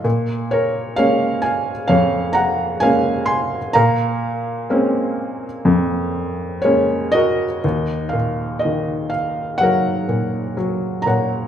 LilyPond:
<<
  \new Staff \with { instrumentName = "Felt piano" } { \time 4/4 \key bes \minor \tempo 4 = 62 << { r8 des''8 f''8 aes''8 f''8 bes''8 aes''8 c'''8 | bes''2. des''8 ees''8~ | ees''8 f''8 ees''8 f''8 ges''4. bes''8 | } \\ { r8 bes'8 des''8 f''8 des''8 ges''8 f''8 aes''8 | f''2. r8 <ges' bes'>8~ | <ges' bes'>4. r8 <bes' des''>4. <des'' ges''>8 | } >> }
  \new Staff \with { instrumentName = "Felt piano" } { \clef bass \time 4/4 \key bes \minor bes,4 <aes bes des'>4 f,4 <aes bes des'>4 | bes,4 <aes bes c' des'>4 f,4 <aes bes des'>4 | ees,8 bes,8 ees4 ges8 bes,8 ges8 bes,8 | }
>>